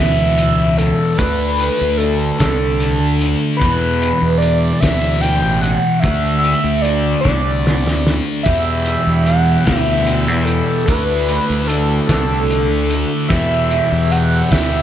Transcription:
Already playing: D2 B2 E3 E5
0.00 E2
0.38 closed hi-hat
0.59 C#2
0.77 A4, closed hi-hat
1.17 D2 D3 A3 D4 B4, kick, closed hi-hat
1.59 closed hi-hat
1.81 D2
1.97 A4, closed hi-hat
2.39 C2 A3 D4 A4, kick, snare, closed hi-hat
2.43 D3
2.80 closed hi-hat
3.01 D2
3.21 closed hi-hat
3.57 E2 B4
3.61 E2 B2 E3, kick, closed hi-hat
4.02 closed hi-hat
4.22 E2
4.38 D5
4.42 closed hi-hat
4.80 D2 E3 E5, kick, snare, closed hi-hat
4.84 E2 B2
5.21 G5, closed hi-hat
5.42 A1
5.61 F#5, closed hi-hat
6.00 D3 E5, closed hi-hat
6.04 D2 A3 D4, kick
6.39 E5
6.44 closed hi-hat
6.64 D2
6.81 D5, closed hi-hat
7.21 D4 D5
7.25 C2 D3 A3, kick, snare
7.67 snare
7.86 D2, snare
8.07 snare
8.43 E2 G3 B3 E4 G4 E5, kick, closed hi-hat
8.48 B2 E3
8.86 closed hi-hat
9.07 E2
9.23 F#5, closed hi-hat
9.64 D2 B2 E3 E5, kick, snare, closed hi-hat
9.69 E2
10.07 closed hi-hat
10.28 E2
10.44 A4, closed hi-hat
10.85 D2 D3 A3 D4 F#4 B4, kick, closed hi-hat
10.90 D4
11.29 closed hi-hat
11.50 D2
11.67 A4, closed hi-hat
12.07 C2 D4 A4, kick, snare, closed hi-hat
12.12 D3 A3
12.50 closed hi-hat
12.71 D2
12.90 closed hi-hat
13.28 E2 B2 G3 B3 G4 E5, kick, closed hi-hat
13.33 E3
13.71 closed hi-hat
13.92 E2
14.11 F#5, closed hi-hat
14.51 D2 B2 E3 E5, kick, snare, closed hi-hat
14.55 E2

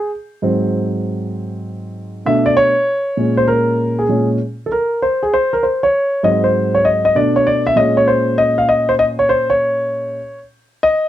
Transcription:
0.42 G#2 F#3 C4
2.26 B2 A3 D4 E5
2.46 D5
2.57 C#5
3.17 A#2 G#3 C#4
3.37 C5
3.48 A#4
3.99 G#4
4.09 A#2 G#3 C#4
4.66 A4
4.72 A#4
5.02 C5
5.23 G#4
5.34 C5
5.53 A#4
5.63 C5
5.83 C#5
6.23 G#2 F#3 C4 D#5
6.44 C5
6.75 C#5
6.85 D#5
7.05 D#5
7.15 B2 A3 D4 D5
7.36 C#5
7.47 D5
7.67 E5
7.76 A#2 G#3 C#4 D#5
7.97 C#5
8.07 C5
8.38 D#5
8.58 F5
8.69 D#5
8.89 C5
8.99 D#5
9.19 C#5
9.29 C5
9.50 C#5
10.83 D#5

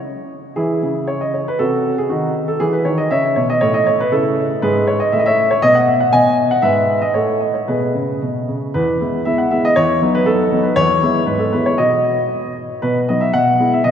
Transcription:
0.56 E3 E4 G#4
0.83 C#3
1.07 C#5
1.21 D#5
1.34 C#5
1.48 B4
1.59 C3 F#4 A4
1.98 G#4
2.10 D#3 D#4 F#4
2.48 A4
2.60 E3 G#4
2.73 B4
2.85 D#3 C#5
2.98 D#5
3.11 C#3 C#5 E5
3.36 B2 C#5
3.50 D#5
3.61 A2 C#5
3.74 D#5
3.86 C#5
4.00 B4
4.12 C#3 E4 A4
4.62 G#2 G#4 B4
4.87 C#5
5.00 D#5
5.12 A2 E5
5.19 D#5
5.26 C#5 E5
5.51 C#5
5.62 B2 D#5
5.75 F#5
5.88 E5
6.00 F#5
6.13 B2 D#5 G#5
6.51 F#5
6.62 G#2 B4 E5
7.02 D#5
7.14 A2 A4 C#5
7.40 D#5
7.54 C#5
7.68 B2 G#4 B4
7.95 C#3
8.22 B2
8.48 C#3
8.74 E2 B4
9.00 G#3 B3 E4
9.25 G#3 B3 E4 E5
9.38 F#5
9.51 G#3 B3 E4 E5
9.65 D#5
9.76 E2 C#5
10.02 F#3 B3 D#4
10.15 B4
10.26 F#3 B3 D#4 A4
10.52 F#3 B3 D#4
10.63 B4
10.76 E2 C#5
11.02 G#3 B3 E4
11.26 G#2 B4
11.39 A4
11.52 G#3 B3 E4 B4
11.66 C#5
11.78 B2 B3 F#4 D#5
12.82 B2 B4
13.09 F#3 B3 D#4 D#5
13.21 E5
13.33 B2 F#5
13.60 G#3 B3 E4
13.73 E5
13.84 B2 D#5

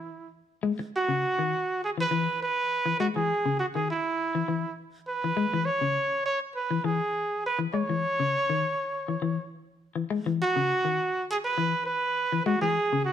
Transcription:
Already playing: E4
0.63 G#3
0.79 muted clean electric guitar stroke
0.96 F#4
1.09 C#3
1.39 D#3
1.84 G#4
1.98 E3 B4
2.11 E3
2.42 B4
2.86 E3
3.00 G#3 F#4
3.16 E3 G#4
3.46 C#3
3.59 F#4
3.75 D#3 G#4
3.90 E4
4.35 E3
4.48 E3
5.08 B4
5.24 E3
5.37 G#3
5.54 E3
5.65 C#5
5.81 C#3
6.26 C#5
6.56 B4
6.71 E3
6.84 E3 G#4
7.46 B4
7.59 E3
7.74 G#3 C#5
7.89 E3
8.20 C#3
8.50 D#3
9.08 E3
9.22 E3
9.96 E3
10.10 G#3
10.26 E3
10.42 F#4
10.56 C#3
10.85 D#3
11.31 G#4
11.45 B4
11.58 E3
11.86 B4
12.32 E3
12.46 G#3 F#4
12.61 E3 G#4
12.93 C#3
13.05 F#4

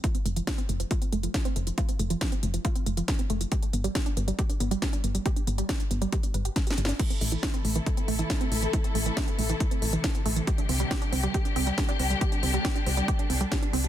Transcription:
0.04 F4, kick, closed hi-hat
0.15 C4, closed hi-hat
0.26 F1 A3, closed hi-hat
0.36 F3, closed hi-hat
0.47 F4, kick, snare, closed hi-hat
0.58 C4, closed hi-hat
0.69 F1 A3, closed hi-hat
0.80 F3, closed hi-hat
0.91 F4, kick, closed hi-hat
1.02 C4, closed hi-hat
1.12 F1 A3, closed hi-hat
1.23 F3, closed hi-hat
1.34 F4, kick, snare, closed hi-hat
1.45 C4, closed hi-hat
1.56 F1 A3, closed hi-hat
1.67 F3, closed hi-hat
1.78 F4, kick, closed hi-hat
1.89 C4, closed hi-hat
1.99 F1 A3, closed hi-hat
2.10 F3, closed hi-hat
2.21 F4, kick, snare, closed hi-hat
2.32 C4, closed hi-hat
2.43 F1 A3, closed hi-hat
2.54 F3, closed hi-hat
2.65 F4, kick, closed hi-hat
2.76 C4, closed hi-hat
2.86 F1 A3, closed hi-hat
2.97 F3, closed hi-hat
3.08 F4, kick, snare, closed hi-hat
3.19 C4, closed hi-hat
3.30 F1 A3, closed hi-hat
3.41 F3, closed hi-hat
3.52 G4, kick, closed hi-hat
3.63 D4, closed hi-hat
3.73 G1 B3, closed hi-hat
3.84 G3, closed hi-hat
3.95 G4, kick, snare, closed hi-hat
4.06 D4, closed hi-hat
4.17 G1 B3, closed hi-hat
4.28 G3, closed hi-hat
4.39 G4, kick, closed hi-hat
4.50 D4, closed hi-hat
4.60 G1 B3, closed hi-hat
4.71 G3, closed hi-hat
4.82 G4, kick, snare, closed hi-hat
4.93 D4, closed hi-hat
5.04 G1 B3, closed hi-hat
5.15 G3, closed hi-hat
5.26 G4, kick, closed hi-hat
5.36 D4, closed hi-hat
5.47 G1 B3, closed hi-hat
5.58 G3, closed hi-hat
5.69 G4, kick, snare, closed hi-hat
5.80 D4, closed hi-hat
5.91 G1 B3, closed hi-hat
6.02 G3, closed hi-hat
6.12 G4, kick, closed hi-hat
6.23 D4, closed hi-hat
6.34 G1 B4, closed hi-hat
6.45 G4, closed hi-hat
6.56 D4, kick, snare, closed hi-hat
6.67 G4, snare, closed hi-hat
6.78 G1 D4, closed hi-hat
6.85 D4, snare, closed hi-hat
6.99 C3 E3 A3 E4 A4, kick, closed hi-hat, crash
7.10 C4, closed hi-hat
7.21 A1 A3, open hi-hat
7.32 E3, closed hi-hat
7.43 E4, kick, snare, closed hi-hat
7.54 C4, closed hi-hat
7.65 A1 A3, open hi-hat
7.76 E3, closed hi-hat
7.86 E4, kick, closed hi-hat
7.97 C4, closed hi-hat
8.08 A1 A3, open hi-hat
8.19 E3, closed hi-hat
8.30 E4, kick, snare, closed hi-hat
8.41 C4, closed hi-hat
8.52 A1 A3, open hi-hat
8.62 E3, closed hi-hat
8.73 E4, kick, closed hi-hat
8.84 C4, closed hi-hat
8.95 A1 A3, open hi-hat
9.06 E3, closed hi-hat
9.17 E4, kick, snare, closed hi-hat
9.28 C4, closed hi-hat
9.39 A1 A3, open hi-hat
9.49 E3, closed hi-hat
9.60 E4, kick, closed hi-hat
9.71 C4, closed hi-hat
9.82 A1 A3, open hi-hat
9.93 E3, closed hi-hat
10.04 E4, kick, snare, closed hi-hat
10.15 C4, closed hi-hat
10.26 A1 A3, open hi-hat
10.36 E3, closed hi-hat
10.47 D3 G3 D4 G4, kick, closed hi-hat
10.58 D4, closed hi-hat
10.69 C2 C4, open hi-hat
10.80 G3, closed hi-hat
10.91 G4, kick, snare, closed hi-hat
11.02 D4, closed hi-hat
11.13 C2 C4, open hi-hat
11.23 G3, closed hi-hat
11.34 G4, kick, closed hi-hat
11.45 D4, closed hi-hat
11.56 C2 C4, open hi-hat
11.67 G3, closed hi-hat
11.78 G4, kick, snare, closed hi-hat
11.89 D4, closed hi-hat
11.99 C2 C4, open hi-hat
12.10 G3, closed hi-hat
12.21 G4, kick, closed hi-hat
12.32 D4, closed hi-hat
12.43 C2 C4, open hi-hat
12.54 G3, closed hi-hat
12.65 G4, kick, snare, closed hi-hat
12.76 D4, closed hi-hat
12.86 C2 C4, open hi-hat
12.97 G3, closed hi-hat
13.08 G4, kick, closed hi-hat
13.19 D4, closed hi-hat
13.30 C2 C4, open hi-hat
13.41 G3, closed hi-hat
13.52 G4, kick, snare, closed hi-hat
13.62 D4, closed hi-hat
13.73 C2 C4, open hi-hat
13.84 G3, closed hi-hat

